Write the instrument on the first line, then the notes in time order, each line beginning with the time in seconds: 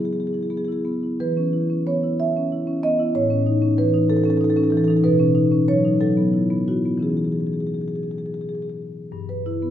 marimba
Already playing: F#3
0.00 B3
0.05 G#4
0.13 G#4
0.20 G#4
0.27 G#4
0.33 E4 G#4
0.43 G#4
0.50 B3 G#4
0.57 G#4
0.65 E4 G#4
0.72 G#4
0.85 B3
1.03 E4
1.20 E3 B4
1.37 C#4
1.53 E4
1.70 C#4
1.87 B3 C#5
2.03 E4
2.20 E5
2.37 C#4
2.52 E4
2.67 C#4
2.83 B3 D#5
2.99 E4
3.15 A2 C#5
3.30 C#4
3.47 D#4
3.62 C#4
3.78 E3 B4
3.94 D#4
4.10 A4
4.17 A4
4.24 C#4 A4
4.30 A4
4.37 D#4 A4
4.44 A4
4.50 A4
4.56 C#4 A4
4.64 A4
4.70 E3 A4
4.77 A4
4.84 D#4 A4
4.90 A4
4.97 A4
5.04 B2 B4
5.20 C#4
5.35 D#4
5.52 C#4
5.68 F#3 C#5
5.85 D#4
6.00 F#3 A4
6.17 B3
6.33 E4
6.50 B3
6.68 E4 F#4
6.86 B3
6.98 E3 C#4 E4
7.03 G#4
7.10 G#4
7.17 G#4
7.25 G#4
7.32 G#4
7.40 G#4
7.47 G#4
7.53 G#4
7.60 G#4
7.67 G#4
7.74 G#4
7.81 G#4
7.88 G#4
7.96 G#4
8.03 G#4
8.11 G#4
8.18 G#4
8.26 G#4
8.34 G#4
8.41 G#4
8.49 G#4
8.55 G#4
8.62 G#4
8.69 G#4
9.12 G2
9.29 B4
9.46 E4
9.62 B3